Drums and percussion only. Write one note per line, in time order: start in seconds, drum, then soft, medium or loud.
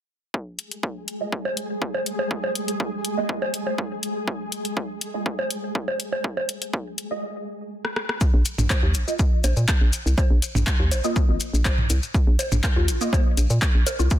0.34 kick loud
0.59 closed hi-hat medium
0.71 closed hi-hat soft
0.83 kick loud
1.08 closed hi-hat medium
1.32 kick loud
1.45 low bongo medium
1.57 closed hi-hat medium
1.82 kick loud
1.94 low bongo medium
2.06 closed hi-hat medium
2.19 low bongo medium
2.31 kick loud
2.44 low bongo medium
2.55 closed hi-hat medium
2.68 closed hi-hat soft
2.80 kick loud
3.05 closed hi-hat medium
3.29 kick loud
3.42 low bongo medium
3.54 closed hi-hat medium
3.67 low bongo soft
3.78 kick loud
4.03 closed hi-hat medium
4.28 kick loud
4.52 closed hi-hat medium
4.65 closed hi-hat soft
4.77 kick loud
5.01 closed hi-hat medium
5.26 kick loud
5.39 low bongo medium
5.50 closed hi-hat medium
5.75 kick loud
5.88 low bongo medium
6.00 closed hi-hat medium
6.12 low bongo medium
6.24 kick loud
6.37 low bongo medium
6.49 closed hi-hat medium
6.62 closed hi-hat soft
6.73 kick loud
6.98 closed hi-hat medium
7.85 cross-stick medium
7.96 cross-stick medium
8.09 cross-stick medium
8.21 kick loud
8.21 maracas soft
8.45 closed hi-hat medium
8.45 maracas medium
8.58 mid tom loud
8.58 maracas medium
8.70 kick loud
8.70 clap medium
8.70 low bongo medium
8.70 maracas soft
8.94 closed hi-hat medium
8.94 maracas medium
9.08 maracas soft
9.19 kick loud
9.19 maracas soft
9.44 closed hi-hat medium
9.44 low bongo medium
9.44 maracas medium
9.57 maracas soft
9.68 kick loud
9.68 clap medium
9.68 closed hi-hat soft
9.68 maracas soft
9.93 closed hi-hat medium
9.93 maracas medium
10.07 maracas medium
10.18 kick loud
10.18 low bongo medium
10.18 maracas soft
10.42 closed hi-hat medium
10.42 maracas medium
10.55 mid tom loud
10.55 maracas medium
10.67 kick loud
10.67 clap medium
10.67 maracas soft
10.91 closed hi-hat medium
10.91 low bongo medium
10.91 maracas loud
11.04 maracas medium
11.16 kick loud
11.16 maracas soft
11.40 closed hi-hat medium
11.40 maracas medium
11.54 maracas medium
11.65 kick loud
11.65 clap medium
11.65 closed hi-hat soft
11.65 low bongo medium
11.65 maracas soft
11.78 mid tom medium
11.90 closed hi-hat medium
11.90 maracas medium
12.03 maracas medium
12.14 kick loud
12.14 maracas soft
12.39 closed hi-hat loud
12.39 low bongo medium
12.39 maracas loud
12.52 mid tom loud
12.52 maracas medium
12.64 kick loud
12.64 clap loud
12.64 maracas soft
12.88 closed hi-hat loud
12.88 maracas loud
13.01 maracas medium
13.13 kick loud
13.13 low bongo medium
13.13 maracas soft
13.37 closed hi-hat medium
13.37 maracas medium
13.50 maracas soft
13.62 kick loud
13.62 clap medium
13.62 closed hi-hat soft
13.62 maracas soft
13.87 closed hi-hat medium
13.87 low bongo medium
13.87 maracas loud
13.99 maracas medium
14.10 kick loud
14.10 maracas soft